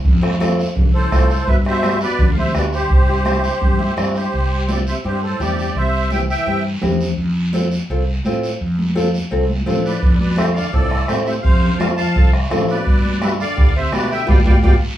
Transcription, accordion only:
0.94 A4 C5
1.47 B4 E5
1.67 C5 E5
2.02 B4 D5
2.32 F5
2.38 C5 E5
2.55 B4 D5
2.73 G4 C5
4.17 G4 C5
4.70 G4 D5
4.87 C5 E5
5.05 G4 C5
5.22 A4 C5
5.40 G4 D5
5.76 C5 E5
6.12 E5 G5
6.30 E5 G5
9.85 B4 D5
10.20 B4 D5
10.37 C5 E5
10.54 D5 F5
10.71 A4 D5
11.07 C5 E5
11.24 C5 E5
11.42 C5 F5
11.78 F5 A5
11.96 F5 A5
12.70 B4 D5
13.22 B4 E5
13.40 D5 F5
13.77 C5 E5
13.94 B4 D5
14.11 E5 G5
14.29 D5 F5 G5
14.46 D5 F5 G5
14.63 D5 F5 G5

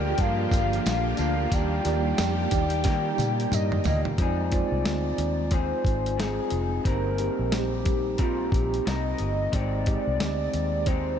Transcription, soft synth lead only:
Already playing: G5
0.20 F5
1.21 F5
1.54 G5
3.53 D#5
3.87 D#5
4.19 D5
5.53 C5
6.19 G#4
6.87 A#4
7.53 G4
8.20 F4
8.53 G4
8.87 D#5
9.53 D5
10.87 C5

